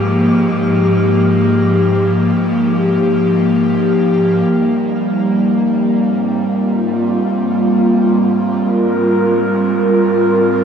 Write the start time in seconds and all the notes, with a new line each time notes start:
Already playing: G#2 F3 A#3 D#4 G4 F6
4.51 G#2 G3
5.70 C4
6.55 F4
8.59 A#4